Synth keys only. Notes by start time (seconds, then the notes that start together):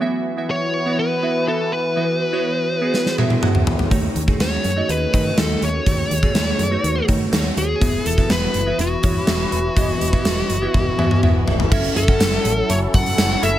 0.01 E3 B3 E4 F#4 E5
0.37 B3 E4 F#4 E5
0.86 B3 E4 F#4 F#5
1.23 B3 E4 F#4 E5
1.47 B3 E4 F#4 E5
1.96 E3 B3 E4 F#4 E5
2.32 B3 E4 F#4 C#5
2.81 B3 E4 F#4 G#4
3.18 B3 E4 F#4 E5
3.42 B3 E4 F#4 F#5
3.91 D#3 A3 D#4 F#4 C#5
4.27 A3 D#4 F#4 G#4
4.76 A3 D#4 F#4 D#5
5.13 A3 D#4 F#4 D#5
5.37 A3 D#4 F#4 G#4
5.86 D#3 A3 D#4 F#4 C#5
6.22 A3 D#4 F#4 G#4
6.71 A3 D#4 F#4 C#5
7.08 A3 D#4 F#4 C#5
7.32 A3 D#4 F#4 C5
7.39 C#5
7.81 E3 B3 E4 F#4 E5
8.17 B3 E4 F#4 E5
8.66 B3 E4 F#4 E5
9.03 B3 E4 F#4 C#5
9.27 B3 E4 F#4 E5
9.76 E3 B3 E4 F#4 D#5
10.13 B3 E4 F#4 E5
10.62 B3 E4 F#4 E5
10.98 B3 E4 F#4 E5 G#5
11.23 B3 E4 F#4 E5 F#5
11.48 E5
11.71 C#4 E4 F#4 A4 E5
12.08 C#4 E4 F#4 A4 F#5
13.42 C#4 E4 F#4 A4 E5